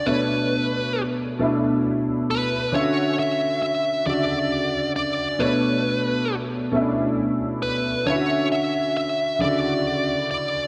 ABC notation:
X:1
M:6/8
L:1/16
Q:3/8=45
K:D
V:1 name="Lead electric guitar"
B4 z6 B2 | c2 e2 e2 d4 d2 | B4 z6 B2 | c2 e2 e2 d4 d2 |]
V:2 name="Grand piano"
[B,,A,Dc]4- [B,,A,Dc] z [B,,A,DE]4- [B,,A,DE] z | [D,C=F^Fe]4- [D,C=F^Fe] z [C,D,Fe]4- [C,D,Fe] z | [B,,A,Dc]4- [B,,A,Dc] z [B,,A,CDE]4- [B,,A,CDE] z | [D,CEFe]4- [D,CEFe] z [C,D,EFe]4- [C,D,EFe] z |]